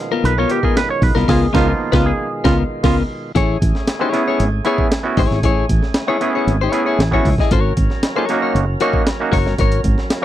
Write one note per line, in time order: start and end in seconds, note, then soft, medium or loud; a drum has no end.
0.00 3.32 B2 medium
0.00 3.32 D#3 medium
0.00 1.24 F3 medium
0.00 3.32 G#3 medium
0.00 1.24 A#3 medium
0.00 1.24 B3 medium
0.00 1.24 D#4 medium
0.00 3.32 F4 medium
0.12 0.33 B3 medium
0.12 0.33 F4 medium
0.12 0.32 A#4 medium
0.24 0.44 B1 loud
0.24 0.38 B4 loud
0.24 closed hi-hat medium
0.38 0.59 B3 medium
0.38 0.59 F4 medium
0.38 0.58 A#4 medium
0.38 0.51 C#5 loud
0.50 0.64 G4 medium
0.50 closed hi-hat medium
0.63 0.80 B3 medium
0.63 0.80 F4 medium
0.63 0.76 G#4 loud
0.63 0.79 A#4 medium
0.63 kick medium
0.77 0.89 B4 loud
0.77 snare loud
0.77 closed hi-hat medium
0.90 1.03 C#5 loud
1.02 1.12 B1 medium
1.02 1.29 B4 medium
1.02 kick loud
1.02 open hi-hat medium
1.15 1.25 C2 medium
1.15 1.29 B3 medium
1.15 1.28 F4 medium
1.15 1.27 A#4 medium
1.15 snare soft
1.28 1.46 C#2 loud
1.28 1.47 B3 loud
1.28 1.41 F4 medium
1.28 1.46 F4 loud
1.28 1.68 G#4 medium
1.28 1.46 A#4 loud
1.28 kick medium
1.28 snare medium
1.28 crash medium
1.53 1.72 C#2 loud
1.53 2.28 F3 medium
1.53 2.28 A#3 medium
1.53 1.71 B3 medium
1.53 2.28 B3 medium
1.53 2.28 D#4 medium
1.53 1.72 F4 loud
1.53 1.68 F4 loud
1.53 1.72 A#4 loud
1.53 kick loud
1.53 snare loud
1.68 2.07 F4 medium
1.92 2.11 C#2 loud
1.92 2.11 B3 loud
1.92 2.05 F4 loud
1.92 2.11 F4 loud
1.92 2.10 B4 loud
1.92 kick loud
1.92 snare loud
2.06 2.54 G#4 medium
2.44 2.62 C#2 loud
2.44 2.63 B3 loud
2.44 2.58 F4 loud
2.44 2.63 F4 loud
2.44 2.62 A#4 medium
2.44 kick loud
2.44 snare loud
2.83 3.01 C#2 loud
2.83 3.02 B3 loud
2.83 2.96 F4 loud
2.83 3.02 F4 loud
2.83 3.01 A#4 loud
2.83 kick loud
2.83 snare loud
2.83 crash medium
3.35 3.55 A1 loud
3.35 7.48 A3 medium
3.35 10.25 C#4 medium
3.35 3.56 E4 loud
3.35 3.56 G#4 loud
3.35 7.48 G#4 medium
3.35 3.57 C#5 loud
3.35 kick medium
3.35 closed hi-hat medium
3.62 3.72 A1 loud
3.62 kick loud
3.62 closed hi-hat medium
3.75 snare soft
3.87 3.93 E4 soft
3.87 3.94 G#4 soft
3.87 snare loud
3.87 closed hi-hat medium
3.99 4.09 B3 medium
3.99 4.09 C#4 medium
3.99 4.09 E4 medium
3.99 4.23 E4 medium
3.99 4.09 F#4 medium
3.99 4.22 G#4 medium
3.99 4.22 C#5 medium
4.13 4.48 B3 loud
4.13 4.48 C#4 loud
4.13 4.48 E4 medium
4.13 4.49 G#4 loud
4.13 snare soft
4.13 closed hi-hat medium
4.28 4.44 E4 soft
4.28 4.44 G#4 soft
4.28 4.43 C#5 medium
4.40 4.59 G#1 loud
4.40 closed hi-hat medium
4.65 4.91 B3 loud
4.65 4.91 C#4 medium
4.65 4.92 E4 loud
4.65 4.86 E4 medium
4.65 4.92 G#4 loud
4.65 4.87 G#4 medium
4.65 4.87 C#5 medium
4.65 closed hi-hat medium
4.78 kick medium
4.92 snare loud
4.92 closed hi-hat medium
5.03 5.21 B3 medium
5.03 5.22 C#4 medium
5.03 5.22 E4 medium
5.03 5.22 F#4 loud
5.17 5.27 G#1 medium
5.17 5.38 E4 medium
5.17 5.39 G#4 loud
5.17 5.39 C#5 loud
5.17 kick medium
5.17 open hi-hat medium
5.30 5.43 G#1 medium
5.30 5.36 E4 soft
5.30 5.37 G#4 soft
5.30 snare soft
5.43 5.63 A1 loud
5.43 5.64 E4 medium
5.43 5.64 G#4 loud
5.43 5.65 C#5 loud
5.43 kick loud
5.43 closed hi-hat medium
5.69 5.79 A1 medium
5.69 kick loud
5.69 closed hi-hat loud
5.83 snare soft
5.94 6.01 E4 soft
5.94 6.02 B4 soft
5.94 snare loud
5.94 closed hi-hat medium
6.07 6.17 B3 medium
6.07 6.17 C#4 medium
6.07 6.17 E4 medium
6.07 6.30 E4 medium
6.07 6.17 G#4 loud
6.07 6.30 G#4 medium
6.07 6.29 C#5 medium
6.21 6.56 B3 loud
6.21 6.56 C#4 loud
6.21 6.57 E4 loud
6.21 6.57 G#4 loud
6.21 closed hi-hat medium
6.35 6.52 E4 medium
6.35 6.52 G#4 medium
6.35 6.51 C#5 medium
6.47 6.67 G#1 medium
6.47 closed hi-hat medium
6.61 6.83 E4 medium
6.61 6.82 G#4 medium
6.61 6.82 C#5 medium
6.72 6.99 B3 loud
6.72 6.99 C#4 medium
6.72 7.00 E4 loud
6.72 7.00 G#4 loud
6.72 closed hi-hat medium
6.86 7.04 E4 medium
6.86 7.03 G#4 medium
6.86 7.02 C#5 medium
6.99 7.19 A1 medium
6.99 snare loud
6.99 closed hi-hat medium
7.11 7.29 B3 medium
7.11 7.30 C#4 medium
7.11 7.30 E4 medium
7.11 7.34 E4 medium
7.11 7.30 F#4 loud
7.11 7.34 G#4 medium
7.11 7.34 C#5 medium
7.11 kick medium
7.25 7.35 C#2 medium
7.25 kick medium
7.25 open hi-hat medium
7.38 7.44 E4 soft
7.38 7.51 E4 soft
7.38 7.45 G#4 soft
7.38 7.52 G#4 medium
7.38 7.53 D#5 medium
7.38 kick loud
7.38 snare soft
7.51 7.71 G#1 loud
7.51 10.25 F#3 medium
7.51 7.72 F#4 loud
7.51 10.25 A#4 medium
7.51 7.72 A#4 loud
7.51 7.73 C#5 loud
7.51 kick medium
7.51 closed hi-hat medium
7.77 7.87 G#1 medium
7.77 kick medium
7.77 closed hi-hat medium
7.90 snare soft
8.03 8.09 D#4 soft
8.03 8.10 F#4 soft
8.03 snare loud
8.03 closed hi-hat medium
8.16 8.25 A#3 medium
8.16 8.25 C#4 medium
8.16 8.25 D#4 medium
8.16 8.38 F#4 medium
8.16 8.26 G#4 medium
8.16 8.38 A#4 medium
8.16 8.37 C#5 medium
8.29 8.64 A#3 loud
8.29 8.65 C#4 loud
8.29 8.65 D#4 loud
8.29 8.65 F#4 loud
8.29 snare soft
8.29 closed hi-hat medium
8.42 8.59 F#4 soft
8.42 8.59 A#4 medium
8.42 8.58 C#5 medium
8.55 8.75 F#1 loud
8.55 closed hi-hat medium
8.80 9.07 A#3 loud
8.80 9.08 C#4 medium
8.80 9.08 D#4 loud
8.80 9.02 F#4 loud
8.80 9.08 F#4 loud
8.80 9.02 A#4 loud
8.80 9.02 C#5 loud
8.80 closed hi-hat medium
8.93 kick medium
9.07 snare loud
9.07 closed hi-hat medium
9.20 9.37 A#3 medium
9.20 9.38 C#4 medium
9.20 9.38 D#4 medium
9.20 9.38 F#4 loud
9.32 9.46 F#1 medium
9.32 9.53 F#4 medium
9.32 9.54 A#4 medium
9.32 9.54 C#5 loud
9.32 kick medium
9.32 open hi-hat medium
9.45 9.56 G1 medium
9.45 9.52 D#4 soft
9.45 9.53 F#4 soft
9.45 snare soft
9.58 9.78 G#1 loud
9.58 9.79 F#4 medium
9.58 9.80 A#4 loud
9.58 9.81 C#5 loud
9.58 kick loud
9.58 closed hi-hat medium
9.72 closed hi-hat medium
9.84 9.94 G#1 loud
9.84 kick medium
9.84 closed hi-hat medium
9.98 snare soft
10.10 10.16 D#4 soft
10.10 10.17 F4 soft
10.10 snare loud
10.10 closed hi-hat medium
10.22 10.25 A#3 medium